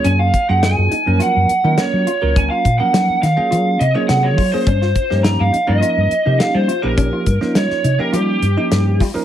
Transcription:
Already playing: tine electric piano F#3 A#3 C#4 F4 G#4
0.04 fingered electric bass F#2, clean electric guitar C#4, lead electric guitar G#5, closed hi-hat
0.19 clean electric guitar F4, lead electric guitar F5
0.34 kick, closed hi-hat
0.49 fingered electric bass F#2, tine electric piano F#3 A#3 C#4 F4 G#4, lead electric guitar F#5
0.63 clean electric guitar D#4, lead electric guitar G#5, snare, closed hi-hat
0.78 fingered electric bass F#2
0.91 clean electric guitar D#4, muted fingered electric bass stroke, closed hi-hat
1.06 fingered electric bass F#2, tine electric piano F3 F#3 A#3 C#4 A#4
1.19 clean electric guitar F4, lead electric guitar F#5, closed hi-hat
1.36 fingered electric bass F#2
1.49 muted fingered electric bass stroke, closed hi-hat
1.64 fingered electric bass D#3, tine electric piano F#3 A#3 C#4 F4 A#4, clean electric guitar D#4
1.78 lead electric guitar C#5, snare, closed hi-hat
1.93 fingered electric bass F#3
2.07 clean electric guitar F4, closed hi-hat
2.22 fingered electric bass C#2, tine electric piano F#3 A#3 C#4 F4 A#4
2.35 clean electric guitar C#4, lead electric guitar G#5, kick, closed hi-hat
2.50 clean electric guitar F4, lead electric guitar F5
2.65 fingered electric bass A#2, kick, closed hi-hat
2.78 tine electric piano F3 F#3 A#3 C#4 A#4, lead electric guitar F#5, muted fingered electric bass stroke
2.93 fingered electric bass F#3, clean electric guitar D#4, snare, closed hi-hat
3.09 muted fingered electric bass stroke
3.22 fingered electric bass D#3, clean electric guitar D#4, lead electric guitar F5, snare, closed hi-hat
3.36 tine electric piano F#3 A#3 C#4 F4 G#4, muted fingered electric bass stroke
3.51 fingered electric bass F#3, clean electric guitar F4, closed hi-hat
3.79 fingered electric bass C3, lead electric guitar D#5, closed hi-hat
3.95 tine electric piano F#3 A#3 C#4 F4 G#4, clean electric guitar D#4, lead electric guitar C#5
4.08 fingered electric bass C3, lead electric guitar F#5, snare, closed hi-hat
4.24 lead electric guitar C#5
4.37 fingered electric bass F#3, clean electric guitar F4, kick, open hi-hat
4.52 tine electric piano F#3 A#3 C#4 F4 G#4, lead electric guitar C5, muted fingered electric bass stroke
4.67 fingered electric bass G2, clean electric guitar C#4, kick, closed hi-hat
4.82 clean electric guitar F4, snare
4.96 kick, closed hi-hat
5.10 fingered electric bass G2, tine electric piano F3 A#3 C#4 D#4 G4, snare
5.23 clean electric guitar D#4, lead electric guitar A#5, snare, closed hi-hat
5.40 fingered electric bass G2, lead electric guitar F5
5.53 clean electric guitar D#4, muted fingered electric bass stroke, closed hi-hat
5.67 fingered electric bass G2, tine electric piano F3 A#3 C#4 D#4 A#4, lead electric guitar D#5
5.81 clean electric guitar F4, closed hi-hat
5.97 fingered electric bass G2
6.11 muted fingered electric bass stroke, closed hi-hat
6.26 fingered electric bass C3, tine electric piano F3 A#3 C#4 D#4 G4, clean electric guitar D#4
6.39 lead electric guitar F5, snare, closed hi-hat
6.55 fingered electric bass G3, lead electric guitar C5
6.68 clean electric guitar F4, closed hi-hat
6.82 fingered electric bass A#1, tine electric piano F3 A#3 C#4 D#4 G4, lead electric guitar A#4
6.97 clean electric guitar C#4, kick, closed hi-hat
7.13 clean electric guitar F4
7.26 fingered electric bass G2, kick, closed hi-hat
7.41 tine electric piano F3 A#3 C#4 D#4 F4, snare
7.55 fingered electric bass G3, clean electric guitar D#4, lead electric guitar C#5, snare, closed hi-hat
7.70 muted fingered electric bass stroke, snare
7.84 fingered electric bass C3, clean electric guitar D#4, closed hi-hat
7.99 tine electric piano F3 A#3 C#4 D#4 G4, lead electric guitar A#4, muted fingered electric bass stroke
8.13 fingered electric bass G3, clean electric guitar F4, lead electric guitar G4, closed hi-hat
8.42 fingered electric bass G2, closed hi-hat
8.57 tine electric piano F3 A#3 C#4 D#4 G4, clean electric guitar D#4
8.71 fingered electric bass G2, snare, closed hi-hat
9.00 fingered electric bass G3, clean electric guitar F4, kick, snare, open hi-hat
9.14 tine electric piano F3 A#3 C#4 D#4 A#4, muted fingered electric bass stroke

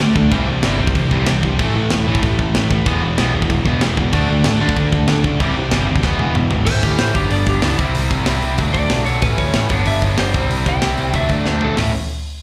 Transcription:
0.00 picked electric bass D2, distorted electric guitar D3 A3 D4
0.15 picked electric bass D2, distorted electric guitar D3 A3 D4, kick
0.31 picked electric bass C2, distorted electric guitar C3 E3 G3 C4, kick, crash
0.48 picked electric bass C2, distorted electric guitar C3 E3
0.63 picked electric bass G1, distorted electric guitar C3 E3 G3 C4, snare, crash
0.79 picked electric bass C2, distorted electric guitar C3 E3 G3 C4
0.87 kick
0.94 picked electric bass C2, distorted electric guitar C3 E3 G3 C4, kick, crash
1.11 picked electric bass C2, distorted electric guitar C3 E3 G3, kick
1.27 picked electric bass C2, distorted electric guitar C3 E3 G3 C4, snare, crash
1.42 picked electric bass C2, distorted electric guitar C3 E3 G3 C4, kick
1.59 picked electric bass A1, distorted electric guitar A2 E3 A3, kick, crash
1.76 picked electric bass A1, distorted electric guitar A2 E3
1.90 picked electric bass E1, distorted electric guitar A2 E3 A3, snare, crash
2.07 picked electric bass A1, distorted electric guitar A2 E3 A3
2.15 kick
2.22 picked electric bass A1, distorted electric guitar A2 E3 A3, kick, crash
2.39 picked electric bass A1, distorted electric guitar A2 E3, kick
2.55 picked electric bass A1, distorted electric guitar A2 E3 A3, snare, crash
2.70 picked electric bass A1, distorted electric guitar A2 E3 A3, kick
2.85 picked electric bass E1, distorted electric guitar E2 B2 E3 G#3 B3, kick, crash
3.02 picked electric bass E1, distorted electric guitar E3 G#3
3.17 picked electric bass B1, distorted electric guitar E2 B2 E3 G#3 B3, snare, crash
3.33 picked electric bass E1, distorted electric guitar E2 B2 E3 G#3
3.42 kick
3.49 picked electric bass E1, distorted electric guitar E2 B2 E3 G#3, kick, crash
3.65 picked electric bass E1, distorted electric guitar E3 G#3 B3, kick
3.81 picked electric bass E1, distorted electric guitar E2 B2 E3 G#3, snare, crash
3.97 distorted electric guitar E2 B2 E3 G#3, picked electric bass E2, kick
4.13 picked electric bass D2, distorted electric guitar D3 A3 D4, kick, crash
4.29 picked electric bass D2, distorted electric guitar D3 A3
4.44 picked electric bass A1, distorted electric guitar D3 A3 D4, snare, crash
4.61 picked electric bass D2, distorted electric guitar D3 A3 D4
4.69 kick
4.76 picked electric bass D2, distorted electric guitar D3 A3 D4, kick, crash
4.92 picked electric bass D2, distorted electric guitar D3 A3, kick
5.08 picked electric bass D2, distorted electric guitar D3 A3 D4, snare, crash
5.24 picked electric bass C#2, distorted electric guitar D3 A3 D4, kick
5.40 picked electric bass C2, distorted electric guitar C3 E3 G3 C4, kick, crash
5.56 picked electric bass C2, distorted electric guitar C3 E3
5.71 picked electric bass G1, distorted electric guitar C3 E3 G3 C4, snare, crash
5.88 picked electric bass D2, distorted electric guitar C3 E3 G3 C4
5.96 kick
6.03 picked electric bass E1, distorted electric guitar E2 B2 E3 G#3 B3, kick, snare
6.19 picked electric bass E1, distorted electric guitar E3 G#3 B3, high tom
6.35 picked electric bass E1, distorted electric guitar E2 B2 E3 G#3, mid tom
6.50 picked electric bass G#1, distorted electric guitar E2 B2 E3 G#3, floor tom
6.66 picked electric bass A1, distorted electric guitar A2 E3 A3 C#4 E4, lead electric guitar C5, kick, crash
6.83 picked electric bass D2, lead electric guitar G4, kick, open hi-hat
6.99 picked electric bass A1, lead electric guitar C5, snare, open hi-hat
7.13 picked electric bass G1, distorted electric guitar G2 D3 G3 B3 D4, lead electric guitar G4, kick, open hi-hat
7.30 picked electric bass G1, lead electric guitar D5, open hi-hat
7.46 picked electric bass G1, lead electric guitar G4, kick, open hi-hat
7.61 picked electric bass C#2, distorted electric guitar G2 D3 G3 B3 D4, lead electric guitar E4, snare, open hi-hat
7.77 picked electric bass C2, distorted electric guitar C3 G3 C4 E4, kick, open hi-hat
7.95 picked electric bass C2, open hi-hat
8.11 picked electric bass C2, kick, open hi-hat
8.26 picked electric bass C2, distorted electric guitar C3 G3 C4 E4, snare, open hi-hat
8.42 picked electric bass C2, open hi-hat
8.58 picked electric bass D2, distorted electric guitar D3 F#3 A3 D4, kick, open hi-hat
8.74 picked electric bass D2, lead electric guitar D5, kick, open hi-hat
8.90 picked electric bass B1, snare, open hi-hat
9.06 distorted electric guitar D3 F#3 A3 D4, lead electric guitar C#5, open hi-hat
9.22 picked electric bass A1, distorted electric guitar A2 E3 A3 C#4 E4, lead electric guitar B4, kick, open hi-hat
9.38 picked electric bass D2, lead electric guitar C#5, kick, open hi-hat
9.54 picked electric bass A1, snare, open hi-hat
9.69 picked electric bass G1, distorted electric guitar G2 D3 G3 B3 D4, kick, open hi-hat
9.86 picked electric bass G1, lead electric guitar E5, open hi-hat
10.02 picked electric bass G1, lead electric guitar C#5, kick, open hi-hat
10.18 picked electric bass G1, distorted electric guitar G2 D3 G3 B3 D4, lead electric guitar C5, snare, open hi-hat
10.33 picked electric bass C2, distorted electric guitar C3 G3 C4 E4, kick, open hi-hat
10.49 picked electric bass C2, open hi-hat
10.66 picked electric bass C2, lead electric guitar G5, kick, open hi-hat
10.82 picked electric bass C2, distorted electric guitar C3 G3 C4 E4, snare, open hi-hat
10.97 picked electric bass C2, open hi-hat
11.13 picked electric bass D2, distorted electric guitar D3 F#3 A3 D4, lead electric guitar E5, kick, open hi-hat
11.29 picked electric bass D2, lead electric guitar D5, kick, open hi-hat
11.46 picked electric bass D2, lead electric guitar C5, snare
11.60 distorted electric guitar D3 F#3 A3 D4, floor tom
11.65 lead electric guitar A4
11.76 picked electric bass A1, distorted electric guitar A2 E3 A3 C#4 E4, snare, floor tom, open hi-hat

